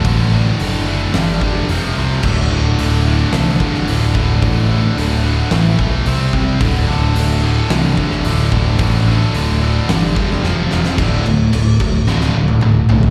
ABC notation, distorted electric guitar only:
X:1
M:4/4
L:1/8
Q:1/4=110
K:G
V:1 name="Distorted electric guitar" clef=bass
[D,,A,,D,] [D,,A,,D,] [D,,A,,D,] [D,,A,,D,] [G,,D,G,] [G,,D,G,] [=F,,C,=F,] [F,,C,F,] | [D,,A,,D,] [D,,A,,D,] [D,,A,,D,] [D,,A,,D,] [D,,A,,D,] [D,,A,,D,] [D,,A,,D,] [D,,A,,D,] | [D,,A,,D,] [D,,A,,D,] [D,,A,,D,] [D,,A,,D,] [A,,E,A,] [A,,E,A,] [C,G,C] [C,G,C] | [D,,A,,D,] [D,,A,,D,] [D,,A,,D,] [D,,A,,D,] [D,,A,,D,] [D,,A,,D,] [D,,A,,D,] [D,,A,,D,] |
[D,,A,,D,] [D,,A,,D,] [D,,A,,D,] [D,,A,,D,] [G,,D,G,] [G,,D,G,] [=F,,C,=F,] [F,,C,F,] | [D,,A,,D,] [D,,A,,] [D,,A,,] [D,,A,,] [D,,A,,D,] [D,,A,,] [D,,A,,] [D,,A,,] |]